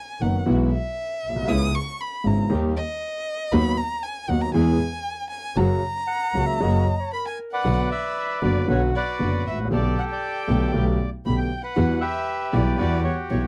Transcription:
Already playing: G#5
0.21 F#1 F#2 D#3 A#3 B3 D#4 F#4 A#4 F#5
0.46 B1 B2 E3 G#3 B3 E4 F#4
0.72 E5
1.24 B1
1.29 A#1
1.36 B1
1.42 C2
1.47 C#2 C#3 G#3 B3 C#4 E4 D#6
1.75 C#6
2.00 B5
2.24 G#1 G#2 C#3 G#3 B3 C#4 E4 A#5
2.50 D#2 D#3 G3 A#3 D#4 G4
2.76 D#5
3.52 D#2 D#3 F#3 B3 D#4 F#4 B5
3.77 A#5
4.03 G#5
4.28 D#2 D#3 F#3 B3 D#4 F#4 F#5
4.41 A#5
4.54 E2 E3 G#3 B3 E4 G#4 G#5
5.30 G#5
5.56 F#1 F#2 C#3 F#3 A#3 C#4 F#4 A#5
6.07 F#5
6.34 C#2 C#3 F#3 A#3 C#4 F#4
6.47 E5
6.60 F#1 F#2 C#3 F#3 A#3 C#4 F#4 D#5
7.00 C#5
7.13 A#4 B5
7.26 G#5
7.52 B4 D5 F#5
7.64 B1 B2 D3 F#3 B3 D4 F#4
7.91 B4 E5
8.41 F#1 F#2 D3 F#3 B3 D4 F#4 D5
8.67 B1 B2 D3 F#3 B3 D4 F#4 C#5
8.95 F#4 B4 D5
9.19 F#1 F#2 D3 F#3 B3 D4 F#4
9.46 A1 E5
9.51 G#1
9.59 A1
9.64 A#1
9.71 B1 B2 D3 A3 B3 G4 A4 D5
9.98 F#5
10.11 D5 G5
10.48 B1 B2 D3 A3 B3 G4
10.73 B1 B2 D3 A3 B3 G4
11.25 B1 B2 D3 A3 B3 G4 B5
11.38 G5
11.63 B4 F#5
11.76 E2 E3 G3 B3 E4 F#4
12.01 G4 B4 E5
12.53 B1 B2 E3 G3 B3 E4 F#4 D5
12.78 E2 E3 G3 B3 E4 F#4 G4 D5
13.04 C#5
13.30 B1 B2 E3 G3 B3 E4 F#4 C#5

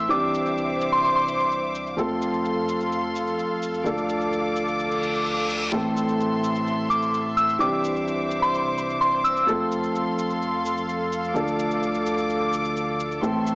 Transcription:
Already playing: E5
0.09 C2 E3 C4 D4 G4 C5 D6, cabasa
0.34 cabasa
0.46 cabasa
0.58 cabasa
0.81 cabasa
0.92 C6, cabasa
1.04 C6, cabasa
1.16 C6
1.28 cabasa
1.40 cabasa
1.52 cabasa
1.75 cabasa
1.87 cabasa
1.97 F2 F3 A3 C4 A4 F5 C6, cabasa
2.22 cabasa
2.34 cabasa
2.45 cabasa
2.69 cabasa
2.80 cabasa
2.92 cabasa
3.16 cabasa
3.27 cabasa
3.39 cabasa
3.62 cabasa
3.74 cabasa
3.84 D2 F3 A3 D4 A4 D6, cabasa
3.98 cabasa
4.09 cabasa
4.21 cabasa
4.33 cabasa
4.56 cabasa
4.68 cabasa
4.79 reverse cymbal, cabasa
4.91 cabasa
5.03 cabasa
5.15 cabasa
5.26 cabasa
5.38 cabasa
5.50 cabasa
5.62 cabasa
5.72 A1 A2 E3 A3 C4 A4 E5 C6, cabasa
5.97 cabasa
6.09 cabasa
6.20 cabasa
6.44 cabasa
6.55 cabasa
6.67 cabasa
6.90 D6, cabasa
7.02 cabasa
7.14 cabasa
7.37 E6, cabasa
7.49 cabasa
7.59 C2 E3 C4 D4 G4 C5 D6, cabasa
7.84 cabasa
7.96 cabasa
8.08 cabasa
8.31 cabasa
8.42 C6, cabasa
8.55 cabasa
8.78 cabasa
8.90 cabasa
9.01 C6, cabasa
9.24 E6, cabasa
9.37 cabasa
9.47 F2 F3 A3 C4 A4 F5 C6, cabasa
9.72 cabasa
9.84 cabasa
9.95 cabasa
10.19 cabasa
10.30 cabasa
10.42 cabasa
10.65 cabasa
10.77 cabasa
10.89 cabasa
11.12 cabasa
11.24 cabasa
11.34 D2 F3 A3 D4 A4 D6, cabasa
11.48 cabasa
11.59 cabasa
11.71 cabasa
11.83 cabasa
11.95 cabasa
12.06 cabasa
12.18 cabasa
12.30 cabasa
12.53 cabasa
12.65 cabasa
12.77 cabasa
13.00 cabasa
13.12 cabasa
13.22 A1 A2 E3 A3 C4 A4 E5 C6, cabasa
13.47 cabasa

